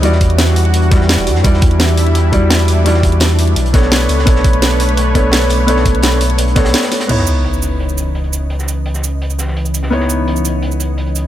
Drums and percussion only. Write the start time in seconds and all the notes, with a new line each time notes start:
0.03 closed hi-hat
0.12 snare
0.21 kick, closed hi-hat
0.30 closed hi-hat
0.38 snare, closed hi-hat
0.47 snare, closed hi-hat
0.56 closed hi-hat, open hi-hat
0.65 closed hi-hat
0.74 closed hi-hat
0.82 closed hi-hat
0.91 kick, snare, closed hi-hat
1.01 snare
1.09 snare, closed hi-hat
1.18 closed hi-hat
1.27 closed hi-hat, open hi-hat
1.35 snare
1.44 kick, closed hi-hat
1.54 snare
1.62 kick, closed hi-hat
1.71 closed hi-hat
1.80 snare, closed hi-hat
1.89 closed hi-hat
1.97 closed hi-hat, open hi-hat
2.07 closed hi-hat
2.15 closed hi-hat
2.33 kick, closed hi-hat
2.50 snare, closed hi-hat
2.59 closed hi-hat
2.68 closed hi-hat, open hi-hat
2.86 closed hi-hat
2.94 snare
3.03 kick, closed hi-hat
3.12 closed hi-hat
3.20 snare, closed hi-hat
3.30 snare, closed hi-hat
3.39 closed hi-hat, open hi-hat
3.48 closed hi-hat
3.56 closed hi-hat
3.66 closed hi-hat
3.74 kick, snare, closed hi-hat
3.82 snare
3.92 snare, closed hi-hat
4.01 closed hi-hat
4.09 closed hi-hat, open hi-hat
4.19 snare
4.27 kick, closed hi-hat
4.36 snare
4.44 kick, closed hi-hat
4.53 closed hi-hat
4.62 snare, closed hi-hat
4.71 closed hi-hat
4.80 closed hi-hat, open hi-hat
4.89 closed hi-hat
4.97 closed hi-hat
5.15 kick, closed hi-hat
5.32 snare, closed hi-hat
5.42 closed hi-hat
5.50 closed hi-hat, open hi-hat
5.68 closed hi-hat
5.77 snare
5.85 kick, closed hi-hat
5.95 closed hi-hat
6.03 snare, closed hi-hat
6.12 snare, closed hi-hat
6.21 closed hi-hat, open hi-hat
6.30 closed hi-hat
6.38 closed hi-hat
6.48 closed hi-hat
6.56 kick, snare, closed hi-hat
6.65 snare, closed hi-hat
6.74 snare, closed hi-hat
6.82 snare, closed hi-hat
6.92 snare, closed hi-hat, open hi-hat
7.00 snare, closed hi-hat
7.09 closed hi-hat, crash
7.18 snare
7.27 closed hi-hat, shaker
7.44 closed hi-hat
7.54 shaker
7.62 closed hi-hat, shaker
7.80 closed hi-hat
7.89 shaker
7.98 closed hi-hat, shaker
8.15 closed hi-hat
8.24 closed hi-hat
8.33 closed hi-hat, shaker
8.50 closed hi-hat
8.59 snare, shaker
8.68 closed hi-hat, shaker
8.86 closed hi-hat
8.94 snare, shaker
9.04 closed hi-hat, shaker
9.22 closed hi-hat
9.30 closed hi-hat, shaker
9.39 snare, closed hi-hat, shaker
9.48 snare
9.57 closed hi-hat
9.65 closed hi-hat, shaker
9.74 closed hi-hat, shaker
9.83 snare
9.92 closed hi-hat
10.00 snare
10.09 closed hi-hat, shaker
10.28 closed hi-hat
10.36 shaker
10.45 closed hi-hat, shaker
10.62 closed hi-hat
10.71 shaker
10.80 closed hi-hat, shaker
10.98 closed hi-hat
11.06 closed hi-hat
11.15 closed hi-hat, shaker